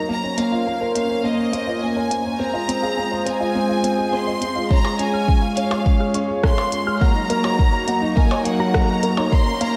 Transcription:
Already playing: A#3 D#4 F#4 A#4
0.09 A#3 C#4 C5 A#5
0.24 C#4 C#5
0.38 A#3 F5, closed hi-hat
0.52 F4
0.67 A#3 A#4
0.81 A#4 C5
0.95 A#3 F5, closed hi-hat
1.09 C#4 C#5
1.24 A#3 D#5 F5
1.38 C#4
1.53 A#3 A#4, closed hi-hat
1.67 F4 C5
1.82 A#3 G#5
1.96 A#4 C#5
2.11 A#3 F5, closed hi-hat
2.25 C#4
2.39 G#3 C4 F4 C5 D#5 A#5
2.54 F4 D#5
2.68 C4, closed hi-hat
2.82 G#4 F5
2.97 C4 G#5
3.12 C5
3.26 C4 C5 G#5, closed hi-hat
3.40 F4 D#5
3.55 C4
3.69 F4 F5
3.84 C4 G#5, closed hi-hat
3.98 G#4
4.13 C4 C5 C6
4.27 C5 D#5
4.41 C4, closed hi-hat
4.56 F4 F5
4.70 C#4 F4 C#5 A#5, kick
4.84 G#4 F5, percussion blips
4.99 C#4 G#5, closed hi-hat
5.13 C#5 F6
5.27 C#4 C#6, kick
5.42 F5
5.56 C#4 C#5 F5, closed hi-hat
5.71 G#4 F5, percussion blips
5.85 C#4, kick
6.00 G#4 F6
6.14 C#4 C#6, closed hi-hat
6.29 C#5
6.43 C#4 C#5 C6, kick, cross-stick
6.58 F5, percussion blips
6.72 C#4, closed hi-hat
6.86 G#4 F6
7.01 F#3 A#3 D#4 F#5 A#5, kick
7.15 D#4
7.30 A#3 A#4, closed hi-hat
7.44 F#4 C#5, percussion blips
7.59 A#3, kick
7.73 A#4 A#5
7.87 A#3 F#5, closed hi-hat
8.02 D#4
8.16 A#3 A#4 G#5, kick
8.30 D#4 C#5, percussion blips
8.45 A#3 F#5, closed hi-hat
8.60 F#4 A#5
8.74 A#3 F#5 A#5, kick, cross-stick
8.89 A#4
9.03 A#3 A#4, closed hi-hat
9.17 D#4 C#5, percussion blips
9.32 A#3 C#4 C5 C6, kick
9.46 C#4 A#5
9.61 A#3 F5 A#5, closed hi-hat

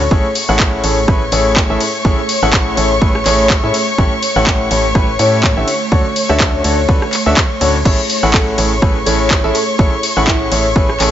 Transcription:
Already playing: A3 C#5
0.11 A1 A2 C#4 E4 G#4 A4 C#5 C#6, kick
0.35 open hi-hat, ride
0.49 A1 A2 C#4 E4 G#4 A4 F#5
0.60 kick, clap
0.84 A1 A2 C#4 E4 G#4 A4 C#5, open hi-hat, ride
1.08 A1 A2 C#4 E4 G#4 A4 B4, kick, cross-stick
1.32 A1 A2 C#4 E4 G#4 A4 C#5, open hi-hat, ride
1.56 kick, clap
1.70 A1 A2 C#4 E4 G#4 A4 E5
1.80 open hi-hat, ride
2.05 A1 A2 C#4 E4 G#4 A4 C#5, kick
2.29 open hi-hat, ride
2.42 A1 A2 C#4 E4 G#4 A4 F#5
2.53 kick, clap
2.77 A1 A2 C#4 E4 G#4 A4 C#5, open hi-hat, ride
3.02 A1 A2 C#4 E4 G#4 A4 B4, kick
3.15 cross-stick
3.26 A1 A2 C#4 E4 G#4 A4 C#5, clap, open hi-hat, ride
3.50 kick, clap
3.63 A2 C#4 E4 G#4 A4 E5
3.74 open hi-hat, ride
3.98 A1 A2 C#4 E4 G4 A4 C#5, kick
4.22 open hi-hat, ride
4.36 A1 A2 C#4 E4 G4 A4 F#5
4.47 kick, clap
4.71 A1 A2 C#4 E4 G4 A4 C#5, open hi-hat, ride
4.95 A1 A2 C#4 E4 G4 A4 B4, kick, cross-stick
5.19 A2 C#4 E4 G4 A4 C#5, open hi-hat, ride
5.43 kick, clap
5.57 A1 D3 C#4 E4 G4 A4 E5
5.68 open hi-hat, ride
5.92 D2 D3 C#4 D4 F#4 A4 C#5, kick
6.16 open hi-hat, ride
6.29 D2 D3 C#4 D4 F#4 A4 E5, cross-stick
6.40 kick, clap
6.64 D2 D3 C#4 D4 F#4 A4 C#5, open hi-hat, ride
6.88 D2 D3 C#4 D4 F#4 A4 B4, kick
7.02 cross-stick
7.13 clap, open hi-hat, ride
7.26 D2 D3 C#4 D4 F#4 A4 E5
7.37 kick, clap
7.61 D2 A2 C#4 D4 F#4 A4 C#5, open hi-hat, ride
7.85 A1 A2 C#4 E4 G#4 A4 C#5 C#6, kick, crash
8.10 open hi-hat, ride
8.23 A1 A2 C#4 E4 G#4 A4 F#5
8.34 A4, kick, clap
8.58 A1 A2 C#4 E4 G#4 A4 C#5, open hi-hat, ride
8.82 A1 A2 C#4 E4 G#4 A4 B4, kick, cross-stick
9.06 A1 A2 C#4 E4 G#4 A4 C#5, open hi-hat, ride
9.31 kick, clap
9.44 A1 A2 C#4 E4 G#4 A4 E5
9.55 A4, open hi-hat, ride
9.79 A1 A2 C#4 E4 G#4 A4 C#5, kick
10.03 open hi-hat, ride
10.17 A1 A2 C#4 E4 G#4 A4 F#5
10.27 E4, kick, clap
10.52 A1 A2 C#4 E4 G#4 A4 C#5, open hi-hat, ride
10.76 A1 A2 C#4 E4 G#4 A4 B4, kick
10.89 cross-stick
11.00 A1 A2 C#4 E4 G#4 A4 C#5, clap, open hi-hat, ride

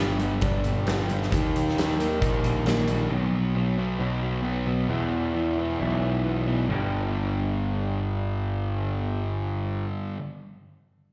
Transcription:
Already playing: G1 G2 D3 B3
0.00 G3
0.18 G2 D3 G3 B3, closed hi-hat
0.41 G1 G2 D3 G3 D4, kick, closed hi-hat
0.64 G3, closed hi-hat
0.86 G2 D3 G3 B3, snare, closed hi-hat
1.09 G2 D3 G3, closed hi-hat
1.22 snare
1.32 D#2 D#3 A#3 D#4, kick, closed hi-hat
1.56 closed hi-hat
1.69 snare
1.75 D#3 G3 A#3 D#4, closed hi-hat
1.79 snare
1.99 D#3 A#3 D#4, closed hi-hat
2.21 A#1 D#3 A#3 D#4, kick, closed hi-hat
2.44 G3, closed hi-hat
2.66 D#3 A#3 D#4, snare, closed hi-hat
2.88 D#3 G3 A#3 D#4, closed hi-hat
3.11 B1 B2 F#3 B3
3.55 B2 F#3 B3
3.76 B2 F#3 B3
3.99 B1 B2 F#3 B3 D#4
4.23 F#3
4.43 B2 F#3 B3
4.66 B2 F#3 B3
4.88 E2 B2 E3
5.34 E2 B2 E3
5.57 E2 B2 E3 B3
5.80 B1 E2 B2 E3 E4
6.02 E3
6.24 E2 B2 E3 B3
6.47 E2 B2 E3
6.67 G1 G2 D3 B3
6.71 G3 D4 G4

